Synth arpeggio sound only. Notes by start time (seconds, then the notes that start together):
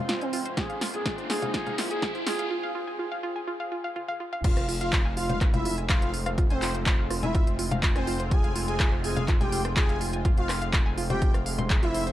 0.09 F4
0.21 G#5
0.33 F4
0.46 C5
0.57 F4
0.70 F5
0.81 F4
0.94 G#5
1.06 F4
1.18 C5
1.30 F4
1.42 F5
1.54 F4
1.66 F5
1.78 F4
1.91 G#5
2.02 F4
2.15 C5
2.27 F4
2.39 F5
2.51 F4
2.63 F5
2.75 F4
2.87 G#5
2.99 F4
3.12 F5
3.23 F4
3.36 G#5
3.47 F4
3.60 F5
3.72 F4
3.84 F5
3.96 F4
4.08 F5
4.20 F4
4.33 F5
4.44 F4
4.57 C5
4.69 F4
4.81 F5
4.93 F4
5.05 G#5
5.17 F4
5.29 C5
5.41 F4
5.54 F5
5.65 F4
5.78 G#5
5.90 F4
6.02 C5
6.14 F4
6.26 F5
6.38 F4
6.50 G#5
6.62 F4
6.75 C5
6.86 F4
6.99 F5
7.11 F4
7.23 G#5
7.35 F4
7.47 C5
7.59 F4
7.71 F5
7.83 F4
7.96 G#5
8.07 F4
8.20 C5
8.31 F4
8.44 F5
8.56 F4
8.68 G#5
8.80 F4
8.92 C5
9.04 F4
9.17 F5
9.28 F4
9.41 G#5
9.52 F4
9.65 C5
9.77 F4
9.89 F5
10.01 F4
10.13 G#5
10.25 F4
10.37 C5
10.49 F4
10.62 F5
10.73 F4
10.86 G#5
10.98 F4
11.10 C5
11.22 F4
11.34 F5
11.46 F5
11.59 C6
11.70 G#4
11.83 F4
11.94 C5
12.07 C5